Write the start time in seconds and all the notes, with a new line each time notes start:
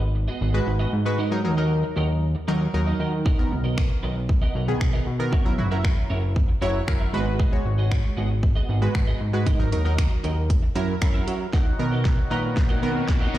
Already playing: G#1
0.02 muted clean electric guitar stroke
0.15 muted clean electric guitar stroke
0.28 B3 F#4 G#4 D#5
0.41 G#1 B3 F#4 G#4 D#5
0.54 G#3 F#4 B4, muted clean electric guitar stroke
0.67 G#1, muted clean electric guitar stroke
0.79 B3 F#4 G#4 D#5
0.93 G#2, muted clean electric guitar stroke
1.05 G#3 F#4 B4, muted clean electric guitar stroke
1.18 D#4 F#4 A#4 D#5
1.31 F#3 D#4 A#4, muted clean electric guitar stroke
1.44 D#2 F#3 D#4 A#4, muted clean electric guitar stroke
1.57 F#3 D#4 F#4 A#4 D#5
1.83 muted clean electric guitar stroke
1.96 D#2 D#4 F#4 A#4 D#5
2.09 muted clean electric guitar stroke
2.35 muted clean electric guitar stroke
2.48 D#2 F#3 D#4 F#4 A#4 D#5
2.61 muted clean electric guitar stroke
2.74 D#2 F#3 D#4 A#4, muted clean electric guitar stroke
2.86 D#4 F#4 A#4 D#5
2.99 D#3 D#4 F#4 A#4 D#5
3.12 muted clean electric guitar stroke
3.25 B3 F#4 A#4 D#5, kick
3.38 D#3 B3 A#4, muted clean electric guitar stroke
3.51 B1, muted clean electric guitar stroke
3.64 B3 F#4 A#4 D#5
3.78 finger snap, kick
3.90 muted clean electric guitar stroke
4.03 B1 B3 F#4 A#4 D#5
4.16 muted clean electric guitar stroke
4.29 muted clean electric guitar stroke, kick
4.42 B3 F#4 A#4 D#5
4.55 B1 B3 F#4 A#4 D#5
4.68 D#3 B3 G#4, muted clean electric guitar stroke
4.81 B1, finger snap, muted clean electric guitar stroke, kick
4.93 B3 F#4 A#4 D#5
5.06 B2, muted clean electric guitar stroke
5.19 D#3 B3 A#4, muted clean electric guitar stroke
5.32 C#4 F#4 A#4 E5, kick
5.45 F#3 E4 A#4, muted clean electric guitar stroke
5.58 F#1 F#3 E4 F#4, muted clean electric guitar stroke
5.71 F#3 C#4 E4 F#4 A#4 E5
5.84 finger snap, kick
5.97 muted clean electric guitar stroke
6.10 F#1 C#4 F#4 A#4 E5
6.23 muted clean electric guitar stroke
6.36 kick
6.49 muted clean electric guitar stroke
6.61 F#1 F#3 C#4 E4 F#4 A#4 C#5 E5
6.75 muted clean electric guitar stroke
6.87 F#1 F#3 E4 A#4, finger snap, muted clean electric guitar stroke, kick
7.00 C#4 F#4 A#4 E5
7.13 G#1 G#3 B3 F#4 G#4 B4 D#5
7.26 muted clean electric guitar stroke
7.39 B3 F#4 G#4 D#5, kick
7.52 G#3 F#4 C#5, muted clean electric guitar stroke
7.65 G#1, muted clean electric guitar stroke
7.78 B3 F#4 G#4 D#5
7.91 finger snap, kick
8.04 muted clean electric guitar stroke
8.17 G#1 B3 F#4 G#4 D#5
8.30 muted clean electric guitar stroke
8.43 muted clean electric guitar stroke, kick
8.56 B3 F#4 G#4 D#5
8.68 G#1 B3 F#4 G#4 D#5
8.82 G#3 F#4 B4, muted clean electric guitar stroke
8.95 G#1, finger snap, muted clean electric guitar stroke, kick
9.07 B3 F#4 G#4 D#5
9.20 G#2, muted clean electric guitar stroke
9.33 G#3 F#4 B4, muted clean electric guitar stroke
9.46 D#4 F#4 A#4 D#5, kick, closed hi-hat
9.59 F#3 D#4 A#4
9.72 D#2 F#3 D#4 A#4, muted clean electric guitar stroke, closed hi-hat
9.85 F#3 D#4 F#4 A#4 D#5
9.98 finger snap, kick, closed hi-hat
10.11 muted clean electric guitar stroke
10.24 D#2 D#4 F#4 A#4 D#5, closed hi-hat
10.37 muted clean electric guitar stroke
10.50 kick, closed hi-hat
10.62 muted clean electric guitar stroke
10.75 F#2 F#3 C#4 E4 F#4 A#4 E5, closed hi-hat
10.88 muted clean electric guitar stroke
11.01 F#2 F#3 E4 A#4, finger snap, muted clean electric guitar stroke, kick, closed hi-hat
11.14 C#4 F#4 A#4 E5
11.27 F#3 C#4 F#4 A#4 E5, closed hi-hat
11.40 muted clean electric guitar stroke
11.53 D#3 F#3 D#4 F#4 A#4 D#5, kick, snare, riser
11.66 muted clean electric guitar stroke
11.79 B2 D#3 B3 A#4, muted clean electric guitar stroke
11.92 D#4 F#4 A#4 D#5
12.05 kick, snare
12.18 muted clean electric guitar stroke
12.30 A#2 D#3 D#4 F#4 A#4 B4 D#5
12.44 muted clean electric guitar stroke
12.56 muted clean electric guitar stroke, kick, snare
12.69 D#4 F#4 A#4 D#5
12.82 B2 D#3 B3 D#4 F#4 A#4 D#5
12.95 muted clean electric guitar stroke
13.08 A#2, muted clean electric guitar stroke, kick, snare
13.21 D#4 F#4 A#4 D#5
13.34 B2 D#3 B3 A#4, muted clean electric guitar stroke